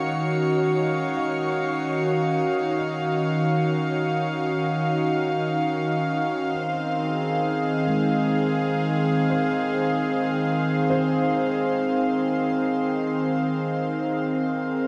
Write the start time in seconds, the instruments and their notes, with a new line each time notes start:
Already playing: analog synth pad D#3 C#4 F#4 F5, synth drone D#3 D#4, felt piano G#3 C#5, violin section C#5 C#7
1.17 felt piano F5
2.78 felt piano D#5
6.53 analog synth pad C4, violin section C5 C6
6.98 analog synth pad G#4
7.87 felt piano G#3
9.30 felt piano C5
10.90 felt piano C5
14.49 analog synth pad A#4